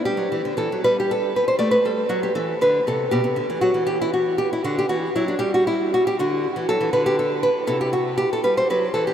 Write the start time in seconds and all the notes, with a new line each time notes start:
0.05 G3 G4
0.17 F#3
0.32 E3
0.45 D3
0.57 E3 A4
0.72 F#3
0.84 G3 B4
1.00 G4
1.11 A4
1.36 B4
1.48 C5
1.59 A3 D5
1.71 B4
1.85 G3 A4
2.09 F#3 F#4
2.23 G4
2.35 E3 A4
2.61 D3 B4
2.87 C3 A4
3.11 B2 G4
3.24 C3
3.36 D3
3.50 E3
3.61 F#3 F#4
3.74 E3
3.87 G4
4.01 E4
4.14 F#4
4.38 G4
4.53 E4
4.64 D3 F#4
4.78 G4
4.89 E3 F#4
5.16 F#3 E4
5.28 D4
5.39 G3 G4
5.54 F#4
5.67 E4
5.94 F#4
6.07 G4
6.19 D3 F#4
6.56 E3
6.69 F#3 A4
6.80 E3
6.93 D3 B4
7.06 G4
7.19 A4
7.43 B4
7.67 C3 E4 A4
7.81 G4
7.93 F#4
8.18 G4
8.33 A4
8.44 G3 B4
8.57 C5
8.70 F#3 B4
8.94 E3 A4
9.07 G4